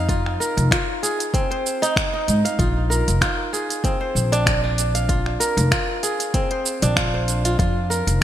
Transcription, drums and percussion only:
0.09 kick, closed hi-hat, shaker
0.26 finger snap
0.42 shaker
0.58 closed hi-hat, shaker
0.71 finger snap, kick, closed hi-hat, shaker
1.03 closed hi-hat, shaker
1.20 closed hi-hat, shaker
1.34 kick, closed hi-hat, shaker
1.52 closed hi-hat
1.66 shaker
1.83 closed hi-hat, shaker
1.96 finger snap, kick, closed hi-hat, shaker
2.28 closed hi-hat, shaker
2.45 closed hi-hat, shaker
2.59 kick, closed hi-hat, shaker
2.92 shaker
3.08 closed hi-hat, shaker
3.21 finger snap, kick, closed hi-hat, shaker
3.54 shaker
3.70 closed hi-hat, shaker
3.84 kick, closed hi-hat, shaker
4.16 shaker
4.33 closed hi-hat, shaker
4.46 finger snap, kick, closed hi-hat, shaker
4.78 closed hi-hat, shaker
4.95 closed hi-hat, shaker
5.09 kick, closed hi-hat, shaker
5.26 finger snap
5.41 closed hi-hat, shaker
5.58 closed hi-hat, shaker
5.71 finger snap, kick, closed hi-hat, shaker
6.03 closed hi-hat, shaker
6.20 closed hi-hat, shaker
6.34 kick, closed hi-hat, shaker
6.51 closed hi-hat
6.66 shaker
6.82 closed hi-hat, shaker
6.96 finger snap, kick, closed hi-hat, shaker
7.28 closed hi-hat, shaker
7.45 closed hi-hat, shaker
7.59 kick, closed hi-hat, shaker
7.91 shaker
8.08 closed hi-hat, shaker

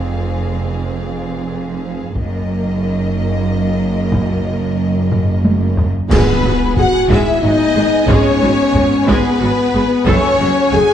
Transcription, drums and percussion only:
2.16 taiko
4.13 taiko
5.12 taiko low-mid
5.45 taiko high
5.78 taiko low
6.11 concert bass drum, taiko, crash
6.77 taiko low
7.10 taiko
8.08 taiko
8.75 taiko low
9.08 taiko
10.07 taiko
10.73 taiko low

